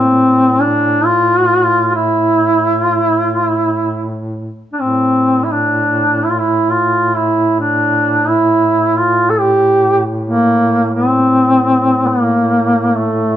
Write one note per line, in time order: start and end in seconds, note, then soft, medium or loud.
0.00 4.62 A2 soft
0.00 0.63 C4 medium
0.61 1.07 D4 medium
1.06 1.94 F4 loud
1.95 2.80 E4 medium
2.80 2.97 F4 medium
2.97 3.26 E4 medium
3.26 3.44 F4 medium
3.44 4.28 E4 medium
4.73 4.82 D4 soft
4.79 13.37 A2 soft
4.79 5.46 C4 medium
5.44 5.54 E4 medium
5.53 6.26 D4 medium
6.24 6.31 E4 medium
6.30 6.40 F4 medium
6.39 6.72 E4 medium
6.70 7.17 F4 medium
7.16 7.59 E4 medium
7.60 8.30 D4 medium
8.28 8.99 E4 medium
8.97 9.32 F4 medium
9.30 9.42 A4 medium
9.40 10.01 G4 loud
10.28 10.89 A#3 medium
10.94 12.09 C4 medium
12.07 12.99 A#3 medium
12.97 13.37 A3 medium